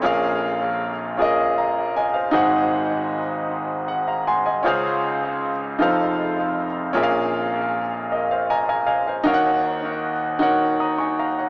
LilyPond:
<<
  \new Staff \with { instrumentName = "Grand piano" } { \time 6/8 \key bes \minor \tempo 4. = 52 << { r2 <f'' bes''>8 <ees'' aes''>16 <c'' f''>16~ | <c'' f''>16 r4. r16 ges''16 <f'' bes''>16 <ges'' aes'' c'''>16 <ees'' aes''>16~ | <ees'' aes''>16 r2 r8. | r4. <bes' ees''>16 <c'' f''>16 <ees'' aes'' bes''>16 <f'' aes'' bes''>16 <ees'' f'' aes''>16 <c'' f''>16~ |
<c'' f''>16 r4. r16 <bes'' ees'''>16 <aes'' des'''>16 <f'' bes''>16 <des'' ges''>16 | } \\ { <des' f' aes' bes' f''>4 r8 <des' f' aes' bes' ees''>4 r8 | <ees' ges' aes' c'' ges''>4 r2 | <des' f' aes' c'' f''>4 r8 <ees' f' a' c'' f''>4 r8 | <des' f' aes' bes' fes'' f''>4 r2 |
<ees' ges' bes' des'' f'' ges''>4 r8 <ees' ges' bes' des'' ges''>4 r8 | } >> }
  \new Staff \with { instrumentName = "Grand piano" } { \clef bass \time 6/8 \key bes \minor <bes,, bes,>2. | <aes,, aes,>2. | <des, des>4. <f,, f,>4. | <bes,, bes,>2. |
<ees, ees>2. | }
>>